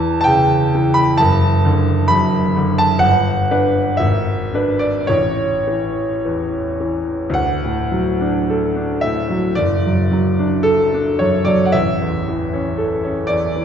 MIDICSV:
0, 0, Header, 1, 2, 480
1, 0, Start_track
1, 0, Key_signature, 2, "major"
1, 0, Tempo, 925926
1, 1579, Time_signature, 4, 2, 24, 8
1, 1580, Tempo, 985222
1, 2060, Tempo, 1104972
1, 4460, Tempo, 1081081
1, 5420, Tempo, 1039861
1, 6310, End_track
2, 0, Start_track
2, 0, Title_t, "Grand piano"
2, 0, Program_c, 0, 0
2, 0, Control_c, 0, 64, 127
2, 0, Note_on_c, 0, 40, 69
2, 0, Note_on_c, 0, 52, 53
2, 0, Note_on_c, 0, 81, 109
2, 99, Note_off_c, 0, 81, 0
2, 107, Note_on_c, 0, 81, 81
2, 124, Note_on_c, 0, 79, 94
2, 136, Note_on_c, 0, 49, 54
2, 138, Note_off_c, 0, 81, 0
2, 286, Note_off_c, 0, 52, 0
2, 387, Note_on_c, 0, 52, 54
2, 487, Note_on_c, 0, 83, 107
2, 496, Note_off_c, 0, 79, 0
2, 526, Note_off_c, 0, 49, 0
2, 596, Note_off_c, 0, 40, 0
2, 609, Note_on_c, 0, 81, 97
2, 616, Note_off_c, 0, 83, 0
2, 622, Note_on_c, 0, 30, 70
2, 627, Note_off_c, 0, 52, 0
2, 630, Control_c, 0, 64, 0
2, 715, Control_c, 0, 64, 127
2, 855, Note_on_c, 0, 50, 55
2, 1077, Note_on_c, 0, 83, 108
2, 1089, Note_on_c, 0, 42, 53
2, 1091, Note_off_c, 0, 81, 0
2, 1239, Note_off_c, 0, 50, 0
2, 1329, Note_on_c, 0, 50, 53
2, 1443, Note_on_c, 0, 81, 91
2, 1448, Note_off_c, 0, 83, 0
2, 1478, Note_off_c, 0, 42, 0
2, 1547, Note_on_c, 0, 31, 63
2, 1551, Note_on_c, 0, 78, 109
2, 1558, Note_off_c, 0, 30, 0
2, 1572, Note_off_c, 0, 81, 0
2, 1575, Note_off_c, 0, 50, 0
2, 1586, Control_c, 0, 64, 0
2, 1670, Control_c, 0, 64, 127
2, 1804, Note_on_c, 0, 62, 47
2, 1807, Note_on_c, 0, 71, 49
2, 2029, Note_off_c, 0, 31, 0
2, 2030, Note_on_c, 0, 76, 75
2, 2035, Note_off_c, 0, 62, 0
2, 2036, Note_off_c, 0, 71, 0
2, 2043, Note_on_c, 0, 32, 61
2, 2046, Note_off_c, 0, 78, 0
2, 2065, Control_c, 0, 64, 0
2, 2146, Control_c, 0, 64, 127
2, 2279, Note_on_c, 0, 62, 46
2, 2284, Note_on_c, 0, 71, 49
2, 2390, Note_on_c, 0, 74, 74
2, 2397, Note_off_c, 0, 76, 0
2, 2510, Note_off_c, 0, 62, 0
2, 2511, Note_on_c, 0, 73, 80
2, 2512, Note_off_c, 0, 32, 0
2, 2513, Note_off_c, 0, 71, 0
2, 2520, Note_on_c, 0, 33, 56
2, 2523, Note_off_c, 0, 74, 0
2, 2541, Control_c, 0, 64, 0
2, 2613, Control_c, 0, 64, 127
2, 2772, Note_on_c, 0, 52, 44
2, 3013, Note_off_c, 0, 73, 0
2, 3023, Note_on_c, 0, 40, 45
2, 3164, Note_off_c, 0, 52, 0
2, 3263, Note_on_c, 0, 52, 45
2, 3409, Note_off_c, 0, 40, 0
2, 3477, Note_on_c, 0, 38, 55
2, 3481, Note_off_c, 0, 33, 0
2, 3495, Note_on_c, 0, 78, 85
2, 3504, Note_off_c, 0, 52, 0
2, 3512, Control_c, 0, 64, 0
2, 3590, Control_c, 0, 64, 127
2, 3631, Note_on_c, 0, 45, 39
2, 3748, Note_on_c, 0, 54, 41
2, 3822, Note_off_c, 0, 45, 0
2, 3873, Note_on_c, 0, 62, 43
2, 3941, Note_off_c, 0, 54, 0
2, 3999, Note_on_c, 0, 69, 45
2, 4063, Note_off_c, 0, 62, 0
2, 4113, Note_on_c, 0, 62, 44
2, 4185, Note_off_c, 0, 69, 0
2, 4221, Note_off_c, 0, 78, 0
2, 4223, Note_on_c, 0, 76, 83
2, 4234, Note_on_c, 0, 45, 42
2, 4299, Note_off_c, 0, 62, 0
2, 4350, Note_on_c, 0, 54, 43
2, 4418, Note_off_c, 0, 45, 0
2, 4429, Note_off_c, 0, 38, 0
2, 4458, Note_on_c, 0, 74, 86
2, 4459, Note_off_c, 0, 76, 0
2, 4464, Note_off_c, 0, 54, 0
2, 4468, Control_c, 0, 64, 0
2, 4469, Note_on_c, 0, 30, 56
2, 4538, Control_c, 0, 64, 127
2, 4596, Note_on_c, 0, 42, 41
2, 4708, Note_on_c, 0, 54, 45
2, 4782, Note_off_c, 0, 42, 0
2, 4829, Note_on_c, 0, 62, 42
2, 4898, Note_off_c, 0, 54, 0
2, 4936, Note_on_c, 0, 69, 80
2, 4942, Note_off_c, 0, 74, 0
2, 5018, Note_off_c, 0, 62, 0
2, 5073, Note_on_c, 0, 62, 48
2, 5179, Note_off_c, 0, 69, 0
2, 5184, Note_on_c, 0, 73, 73
2, 5193, Note_on_c, 0, 42, 39
2, 5260, Note_off_c, 0, 62, 0
2, 5298, Note_on_c, 0, 74, 79
2, 5303, Note_off_c, 0, 73, 0
2, 5306, Note_on_c, 0, 54, 41
2, 5379, Note_off_c, 0, 42, 0
2, 5390, Note_off_c, 0, 74, 0
2, 5391, Note_on_c, 0, 78, 65
2, 5408, Note_off_c, 0, 30, 0
2, 5421, Note_off_c, 0, 78, 0
2, 5422, Note_on_c, 0, 76, 86
2, 5424, Note_off_c, 0, 54, 0
2, 5429, Note_on_c, 0, 33, 51
2, 5430, Control_c, 0, 64, 0
2, 5502, Control_c, 0, 64, 127
2, 5554, Note_on_c, 0, 40, 39
2, 5681, Note_on_c, 0, 52, 42
2, 5743, Note_off_c, 0, 40, 0
2, 5795, Note_on_c, 0, 61, 44
2, 5866, Note_off_c, 0, 52, 0
2, 5908, Note_on_c, 0, 69, 44
2, 5982, Note_off_c, 0, 61, 0
2, 6028, Note_on_c, 0, 61, 46
2, 6097, Note_off_c, 0, 69, 0
2, 6135, Note_on_c, 0, 74, 80
2, 6144, Note_off_c, 0, 76, 0
2, 6146, Note_on_c, 0, 40, 42
2, 6216, Note_off_c, 0, 61, 0
2, 6268, Note_on_c, 0, 52, 44
2, 6310, Note_off_c, 0, 33, 0
2, 6310, Note_off_c, 0, 40, 0
2, 6310, Note_off_c, 0, 52, 0
2, 6310, Note_off_c, 0, 74, 0
2, 6310, End_track
0, 0, End_of_file